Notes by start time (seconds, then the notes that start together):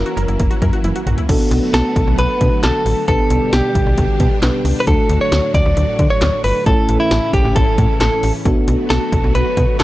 Already playing: E3 F#3 A#3 C#4 E4 A#4
0.06 F#4, closed hi-hat
0.17 F#1 A#4, closed hi-hat
0.28 F#1 E4, closed hi-hat
0.40 F#1 A#3, kick, closed hi-hat
0.51 F#4, closed hi-hat
0.62 F#2 A#4, kick, closed hi-hat
0.73 F#4, closed hi-hat
0.84 F#1 E4, closed hi-hat, high tom
0.96 F#4, closed hi-hat
1.06 A#1 F#4, closed hi-hat, mid tom
1.18 E4, closed hi-hat, floor tom
1.29 B1 D3 F#3 A3 B3 D4 F#4 A4, kick, closed hi-hat, crash
1.51 B1, closed hi-hat
1.74 B1 A4, snare, closed hi-hat
1.96 B1, kick, closed hi-hat
2.07 B1
2.18 B1 B4, closed hi-hat
2.41 B2 B3 D4 F#4 A4, kick, closed hi-hat
2.63 B1 A4, snare, clap, closed hi-hat
2.86 A1, open hi-hat
3.08 B1 B2 G3 B3 D4 G4 A4 B4, kick, closed hi-hat
3.30 B1, closed hi-hat
3.53 B1 G4, snare, closed hi-hat
3.75 B1, kick, closed hi-hat
3.86 B1
3.98 B1, kick, closed hi-hat
4.20 B2, kick, closed hi-hat
4.42 B1 B3 D4 G4 B4, snare, clap, closed hi-hat
4.65 C#2, open hi-hat
4.80 B4
4.87 D2 A2 F#3 A3 D4 F#4 A4, kick, closed hi-hat
5.09 D2, closed hi-hat
5.21 C#5
5.32 D2, snare, closed hi-hat
5.54 D2 D5, kick, closed hi-hat
5.66 D2
5.77 D2, closed hi-hat
5.99 D3, kick, closed hi-hat
6.10 C#5
6.21 D2, snare, clap, closed hi-hat
6.44 G1 B4, open hi-hat
6.66 A1 A2 C#3 E3 A3 C#4 E4 A4, kick, closed hi-hat
6.89 A1, closed hi-hat
7.00 E4
7.11 A1, snare, closed hi-hat
7.33 A1 G4, kick, closed hi-hat
7.45 A1
7.56 A1 A4, kick, closed hi-hat
7.78 A2, kick, closed hi-hat
8.00 A1 A4, snare, clap, closed hi-hat
8.23 A1, open hi-hat
8.45 B1 D3 F#3 A3 B3 D4 F#4 A4, kick, closed hi-hat
8.68 B1, closed hi-hat
8.90 B1 A4, snare, closed hi-hat
9.12 B1, kick, closed hi-hat
9.24 B1
9.35 B1 B4, closed hi-hat
9.57 B2, kick, closed hi-hat
9.79 B1 A4, snare, clap, closed hi-hat